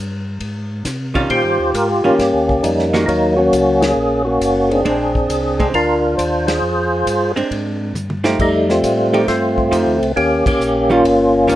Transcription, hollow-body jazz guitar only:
1.14 1.71 D#3 medium
1.14 1.71 G3 medium
1.14 1.71 C#4 medium
1.14 1.71 F4 medium
2.04 2.17 D#3 medium
2.04 2.17 G3 soft
2.04 2.17 C#4 medium
2.04 2.18 F4 medium
2.93 3.06 D#3 medium
2.93 3.06 A#3 medium
2.93 3.06 C#4 medium
2.93 3.06 F#4 medium
4.85 5.12 G#3 soft
4.85 5.12 C4 medium
4.85 5.12 D4 medium
5.60 5.72 G#3 medium
5.60 5.72 C4 medium
5.60 5.73 D4 medium
7.36 7.92 G#3 medium
7.36 7.92 C4 medium
7.36 7.92 D4 medium
8.24 8.37 F3 medium
8.24 8.37 A3 medium
8.24 8.37 D#4 medium
8.24 8.38 G4 medium
9.14 9.26 F3 soft
9.14 9.26 A3 medium
9.14 9.26 D#4 medium
9.14 9.26 G4 medium
9.71 9.98 F3 soft
9.71 9.98 A3 soft
9.71 9.98 D#4 soft
9.71 9.98 G4 soft
10.90 11.02 D#3 medium
10.90 11.03 G3 medium
10.90 11.03 C#4 medium
10.90 11.03 F4 medium
11.48 11.55 D#3 medium
11.48 11.55 G3 medium
11.48 11.55 C#4 medium
11.48 11.55 F4 medium

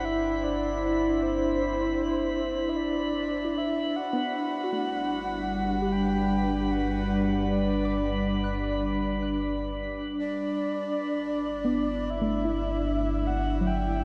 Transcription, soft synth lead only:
0.05 0.45 E5 loud
0.43 1.24 D5 loud
1.22 2.71 C5 medium
2.69 2.78 E5 medium
2.77 3.59 D5 loud
3.58 3.98 E5 loud
3.96 5.94 F#5 loud
5.92 6.73 G5 loud
6.71 7.47 F#5 loud
7.51 9.00 D5 medium
10.19 12.12 D5 medium
12.10 13.28 E5 loud
13.27 13.68 F#5 loud
13.67 14.04 G5 loud

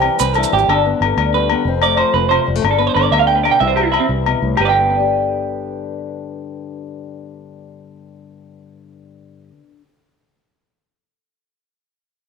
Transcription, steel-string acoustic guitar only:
0.00 0.66 E3 medium
0.00 0.51 G3 soft
0.00 0.18 C4 medium
0.20 0.66 C4 medium
0.37 0.67 G2 medium
0.37 0.69 E4 medium
0.52 0.84 G3 soft
0.69 1.33 G2 medium
0.69 1.17 D4 medium
0.86 1.50 B3 medium
1.02 1.66 D3 medium
1.18 1.64 D4 medium
1.34 1.64 G2 medium
1.34 1.64 G4 medium
1.51 1.64 B3 medium
1.67 2.62 F2 medium
1.67 2.15 C4 medium
1.84 2.46 A3 medium
1.98 2.61 F3 medium
2.17 2.62 C4 medium
2.30 2.61 C3 medium
2.30 2.61 F4 medium
2.47 2.55 G3 soft
2.55 2.63 A3 soft
2.63 3.12 G2 medium
2.63 3.59 D4 soft
2.78 3.58 B3 medium
2.96 3.60 D3 medium
3.13 3.29 G2 medium
3.31 3.45 A2 medium
3.45 3.60 B2 medium
3.60 3.93 C3 medium
3.60 3.93 E3 medium
3.60 3.76 G3 soft
3.60 4.59 E4 medium
3.60 muted steel-string acoustic guitar stroke soft
3.77 4.80 G3 soft
3.95 4.57 E3 medium
4.09 muted steel-string acoustic guitar stroke soft
4.26 4.42 B2 soft
4.43 4.59 A2 medium
4.60 9.50 G2 soft
4.70 9.60 D3 soft
4.80 9.71 B3 soft
4.90 9.81 D4 soft
5.00 9.91 G4 soft

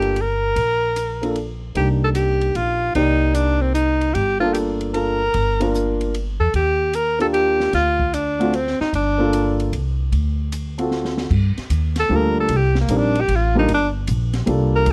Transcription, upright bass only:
0.00 0.52 G1 medium
0.56 1.72 A#1 medium
1.76 2.52 C2 medium
2.55 2.92 A#1 medium
2.95 4.11 C2 medium
4.15 5.31 G1 medium
5.34 6.36 G1 medium
6.40 6.53 E2 medium
6.54 7.69 D#2 medium
7.73 8.75 D2 medium
8.80 muted upright bass stroke soft
8.93 9.68 G1 medium
9.72 10.09 C2 medium
10.12 11.27 D2 medium
11.31 11.55 G2 medium
11.57 muted upright bass stroke soft
11.70 12.09 D#2 medium
12.10 12.48 D2 medium
12.49 12.88 C2 medium
12.89 13.27 A#1 medium
13.29 13.67 A1 medium
13.68 14.07 G1 medium
14.08 14.46 A#1 medium
14.47 14.86 C2 medium
14.87 14.93 D2 medium

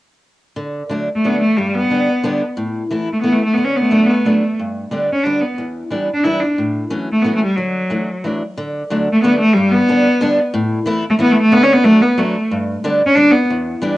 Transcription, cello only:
1.15 1.27 A3 medium
1.26 1.41 B3 medium
1.41 1.58 A3 medium
1.57 1.76 G3 medium
1.74 2.41 B3 medium
3.13 3.21 A3 medium
3.22 3.34 B3 medium
3.33 3.44 A3 medium
3.44 3.55 A3 medium
3.54 3.66 B3 medium
3.64 3.78 C#4 medium
3.76 3.82 B3 medium
3.81 3.83 A3 medium
3.81 3.88 B3 medium
3.86 4.07 A3 medium
4.06 4.23 B3 medium
4.22 4.57 A3 medium
5.13 5.26 C#4 medium
5.24 5.43 D4 medium
5.41 5.58 B3 medium
6.14 6.26 D4 medium
6.24 6.42 E4 medium
6.40 6.57 D4 medium
7.12 7.24 A3 medium
7.22 7.34 B3 medium
7.35 7.44 A3 medium
7.45 7.57 G3 medium
7.56 8.23 F#3 medium
9.13 9.23 A3 medium
9.23 9.39 B3 medium
9.39 9.55 A3 medium
9.53 9.73 G3 medium
9.72 10.38 B3 medium
11.10 11.15 A3 medium
11.22 11.33 B3 medium
11.32 11.41 A3 medium
11.42 11.54 A3 loud
11.52 11.65 B3 loud
11.63 11.75 C#4 medium
11.73 11.86 B3 medium
11.84 12.04 A3 loud
12.02 12.20 B3 medium
12.18 12.51 A3 medium
13.07 13.17 C#4 medium
13.15 13.33 D4 medium
13.32 13.49 B3 medium

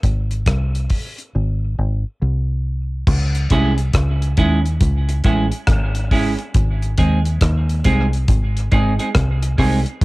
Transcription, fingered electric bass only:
0.04 0.44 G#1 medium
0.47 0.87 C2 medium
1.35 1.74 G#1 medium
1.78 2.03 G#1 medium
2.22 3.04 C2 medium
3.08 3.48 C#2 loud
3.51 3.91 C2 medium
3.95 4.34 C#2 medium
4.39 4.78 D#2 medium
4.82 5.21 C#2 loud
5.25 5.50 A1 medium
5.69 6.35 G#1 medium
6.55 6.95 G#1 medium
6.99 7.38 D#2 medium
7.42 7.82 D#2 medium
7.86 8.25 C2 medium
8.29 8.69 G#1 medium
8.73 8.97 G#1 loud
9.16 9.55 C2 loud
9.59 9.84 C2 medium

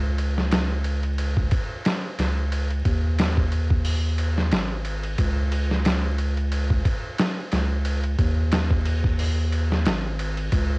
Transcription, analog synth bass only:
0.00 1.49 C#2 loud
2.19 2.83 C#2 medium
2.86 4.54 D#2 loud
4.52 5.16 G#1 loud
5.19 6.83 C#2 loud
7.53 8.16 C#2 loud
8.19 9.88 D#2 loud
9.86 10.50 G#1 loud
10.52 10.79 C#2 loud

